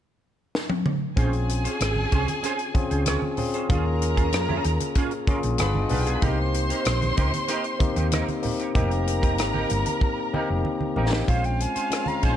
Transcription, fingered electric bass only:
1.17 A#1
1.81 G#1
2.13 C2
2.75 muted fingered electric bass stroke
2.91 C#2
3.70 D#2
4.34 F2
4.65 D#2
5.44 A#1
5.60 G1
5.91 B1
6.22 C2
6.86 A#1
7.18 C#2
7.80 muted fingered electric bass stroke
7.97 D#2
8.75 F1
9.40 G#1
9.71 G1
10.34 muted fingered electric bass stroke
10.50 F1
10.98 A1
11.29 A#1
11.76 muted fingered electric bass stroke
12.24 A#1

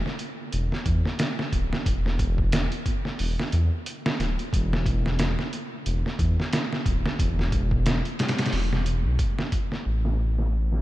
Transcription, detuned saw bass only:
0.54 E1
0.86 E2
1.53 D1
1.86 E1
3.20 E1
3.53 E2
4.20 D1
4.54 E1
5.87 E1
6.20 E2
6.86 D1
7.19 E1
8.53 E1
9.05 B1
9.86 A1

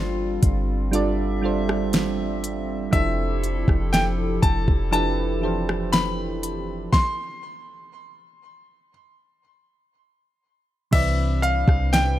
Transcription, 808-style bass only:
Already playing: G1
0.43 G1
2.93 F1
3.68 F1
4.43 F1
4.68 F1
10.93 C2
11.68 C2

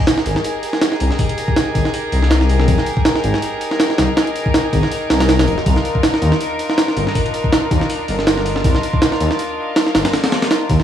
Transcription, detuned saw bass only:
0.26 G#1
1.01 C2
1.75 G#1
2.12 C2
2.68 F1
3.24 G#1
3.99 C2
4.73 G#1
5.10 C2
5.29 C2
5.47 F1
5.66 C2
6.22 D#2
6.97 G1
7.71 D#2
8.09 G1
8.64 C2
9.21 D#2
9.95 G1
10.70 D#2

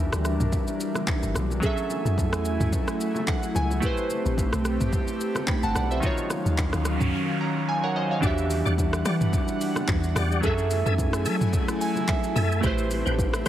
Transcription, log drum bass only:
Already playing: E2
0.13 D2
0.40 B1
1.23 G1
1.35 B1
2.05 F#2
2.33 E2
2.60 D2
3.55 C#2
4.25 A1
4.53 B1
4.80 A1
5.63 G1
5.75 B1
6.46 D#2
6.73 D2
7.01 C#2
8.23 E2
8.66 E2
9.06 E3
9.88 E2
10.16 E2
10.43 F#2
10.86 F#2
11.26 F#3
12.36 F#2
12.63 A1
13.06 A1

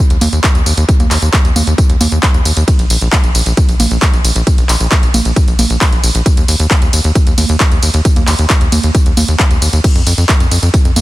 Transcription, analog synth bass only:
0.10 D#2
0.21 D#2
0.32 D#2
0.55 D#2
0.66 D#2
0.77 D#2
1.00 D#2
1.11 D#2
1.22 D#2
1.44 D#2
1.56 D#2
1.67 D#2
1.89 D#2
2.01 D#2
2.12 D#2
2.34 D#2
2.45 D#2
2.57 D#2
2.79 A#1
2.90 A#1
3.02 A#1
3.24 A#1
3.35 A#1
3.46 A#1
3.69 A#1
3.80 A#1
3.91 A#1
4.13 A#1
4.24 A#1
4.35 A#1
4.58 A#1
4.69 A#1
4.80 A#1
5.03 A#1
5.14 A#1
5.25 A#1
5.48 A#1
5.59 A#1
5.70 A#1
5.92 A#1
6.03 A#1
6.15 A#1
6.37 D#2
6.48 D#2
6.59 D#2
6.82 D#2
6.93 D#2
7.04 D#2
7.27 D#2
7.38 D#2
7.49 D#2
7.72 D#2
7.83 D#2
7.94 D#2
8.16 D#2
8.28 D#2
8.39 D#2
8.61 D#2
8.72 D#2
8.84 D#2
9.06 D#2
9.17 D#2
9.28 D#2
9.51 D#2
9.62 D#2
9.73 D#2
9.95 F2
10.07 F2
10.18 F2
10.40 F2
10.51 F2
10.63 F2
10.85 F2
10.96 F2

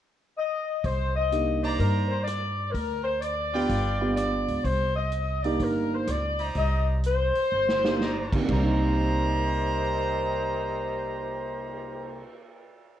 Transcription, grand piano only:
1.32 A#3 D4 D#4 G4
3.54 B3 D4 F4 G4
4.01 B3 D4 F4 G4
5.44 A#3 D4 D#4 G4
7.84 A#3 D4 D#4 G4
8.33 C3 A#3 D4 D#4 G4
8.38 C3
8.44 G3
8.50 A#3
8.57 D5
8.63 D#4

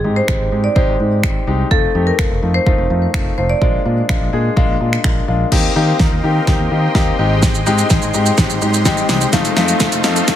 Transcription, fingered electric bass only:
0.04 G#2
0.28 G#1
0.40 G#1
0.52 G#2
0.76 G#1
0.88 G#1
1.00 G#2
1.24 G#1
1.47 C2
1.71 F1
1.95 F2
2.19 F1
2.31 F1
2.43 F2
2.67 F1
2.78 F1
2.90 F2
3.14 F1
3.38 F1
3.62 A#1
3.85 A#2
4.09 A#1
4.21 A#1
4.33 A#2
4.57 A#1
4.69 A#1
4.81 A#2
5.04 A#1
5.28 A#1
5.52 D#2
5.76 D#3
6.00 D#2
6.12 D#2
6.24 D#3
6.47 D#2
6.59 D#2
6.71 D#3
6.95 D#2
7.19 G#1
7.66 G#2
7.90 G#1
8.02 G#1
8.14 G#2
8.38 G#1
8.50 G#1
8.62 G#2
8.85 G#1
9.09 C2
9.33 F1
9.57 F2
9.81 F1
9.92 F1
10.04 F2
10.28 F1

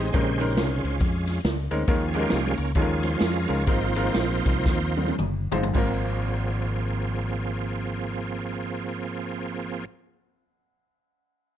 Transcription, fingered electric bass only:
Already playing: A1
0.14 A#1
0.57 C2
0.84 C#2
1.01 F2
1.44 C#2
1.72 D2
1.88 D#2
2.32 C2
2.58 C#2
2.76 D#2
3.21 F2
3.49 C#2
3.67 G#1
4.16 A#1
4.46 C2
4.66 D#2
5.19 F#1
5.53 G1
5.75 G#1

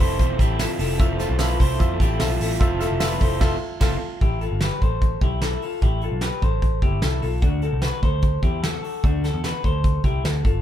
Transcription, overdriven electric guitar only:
0.00 C4 E4 A4
0.19 F3 C4 E4 A4
0.39 C4 E4 A4
0.59 F3 C4 E4 A4
0.80 C4 E4 A4
1.00 F3 C4 E4 A4
1.20 C4 E4 A4
1.40 F3 C4 E4 A4
1.61 C4 E4 A4
1.80 F3 C4 E4 A4
2.01 C4 E4 A4
2.21 F3 C4 E4 A4
2.41 C4 E4 A4
2.61 F3 C4 E4 A4
2.81 C4 E4 A4
3.01 F3 C4 E4 A4
3.20 C4 E4 A4
3.39 F3 C4 E4 A4
3.80 F3 C4 E4 A4

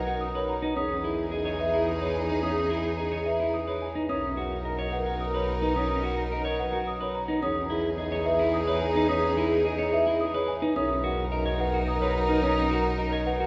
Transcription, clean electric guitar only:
0.07 F#4
0.35 B4
0.62 D#4
0.76 C#4
1.04 E4
1.31 G#4
1.45 C#5
1.74 E4
2.01 B4
2.29 D#4
2.43 C#4
2.70 E4
2.98 G#4
3.12 C#5
3.40 E4
3.67 B4
3.95 D#4
4.09 C#4
4.37 F#4
4.65 A#4
4.79 C#5
5.06 F#4
5.34 B4
5.62 D#4
5.76 C#4
6.03 F#4
6.32 A#4
6.45 C#5
6.72 F#4
7.01 B4
7.28 D#4
7.42 C#4
7.70 E4
7.98 G#4
8.12 C#5
8.39 E4
8.67 B4
8.96 D#4
9.09 C#4
9.37 E4
9.65 G#4
9.78 C#5
10.07 E4
10.34 B4
10.62 D#4
10.76 C#4
11.04 F#4
11.32 A#4
11.46 C#5
11.74 F#4
12.02 B4
12.29 D#4
12.43 C#4
12.71 F#4
12.99 A#4
13.13 C#5
13.40 F#4

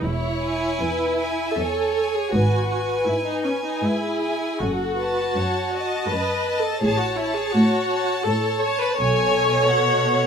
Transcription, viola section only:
0.04 E4
1.57 A4
2.15 G#4
2.32 F#4
3.08 E4
3.25 D#4
3.46 C#4
3.65 D#4
3.82 E4
4.59 F#4
6.08 B4
6.64 A4
6.81 G#4
6.99 F#4
7.17 E4
7.34 G#4
7.52 F#4
8.25 A4
8.61 C#5
8.80 B4
8.96 C#5

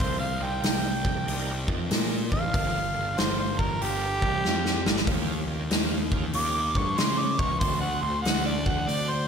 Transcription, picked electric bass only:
0.00 C2
0.40 C2
0.62 C2
1.28 C2
1.68 F2
1.91 A#2
2.32 A1
2.54 G1
2.98 G1
3.19 G1
3.82 G1
4.21 C2
4.46 F2
4.86 G1
5.07 D#2
5.47 D#2
5.70 D#2
6.34 D#2
6.76 G2
6.99 C#3
7.39 C#2
7.62 D2
8.02 D2
8.26 D2
8.88 D2

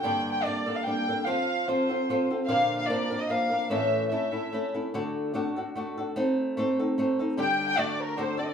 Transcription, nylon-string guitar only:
0.03 G2 D3 G3 A#3 D4 A4
0.45 G3 A#3 D4 A4
0.66 G3 A#3 D4 A4
0.86 G3 A#3 D4 A4
1.08 G3 A#3 D4 A4
1.26 F3 C4 F4 A4
1.68 F3 C4 F4 A4
1.89 C4 F4 A4
2.09 F3 C4 F4 A4
2.31 C4 F4 A4
2.48 A#2 D3 F3 A#3 D4 A#4
2.89 F3 A#3 D4 A#4
3.10 F3 A#3 D4 A#4
3.29 F3 A#3 D4 A#4
3.50 F3 A#3 D4 A#4
3.70 A2 E3 A3 C#4 E4 A4
4.12 A3 C#4 E4 A4
4.32 A3 C#4 E4 A4
4.53 A3 C#4 E4 A4
4.74 A3 C#4 E4 A4
4.94 D3 A3 D4 F#4 A4
5.34 A3 D4 F#4 A4
5.56 D4 F#4 A4
5.75 A3 D4 F#4 A4
5.98 D4 F#4 A4
6.16 A3 C4 D#4 A4
6.57 A3 C4 D#4 A4
6.79 C4 D#4 A4
6.98 A3 C4 D#4 A4
7.19 C4 D#4 A4
7.37 D3 G3 D4 G4 A4
7.77 A3 D4 F#4 A4
8.17 A3 D4 F#4 A4
8.37 D4 F#4 A4

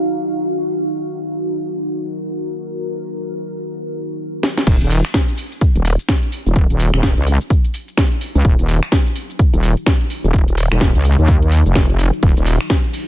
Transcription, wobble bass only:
4.67 D#1
4.81 D#1
5.75 D#1
6.46 D#1
6.70 D#1
6.94 D#1
7.17 C#2
8.35 C#2
8.45 D#1
8.59 D#1
9.54 D#1
10.24 D#1
10.48 D#1
10.72 D#1
10.95 C#2
11.19 D#2
11.66 F1
12.23 D#1
12.37 D#1

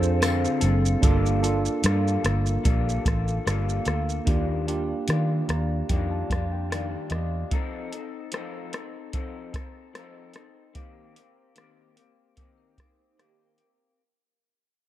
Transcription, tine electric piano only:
Already playing: C4 D4 F4 G#4 A4
1.01 A#3 D4 F4 A4
1.41 A#3 D4 F4 A4
4.25 A#3 D4 F4 G4
4.67 A#3 D4 F4 G4
5.49 A#5
5.89 G5
6.11 A5
6.52 G5
6.70 F5
7.11 D#5

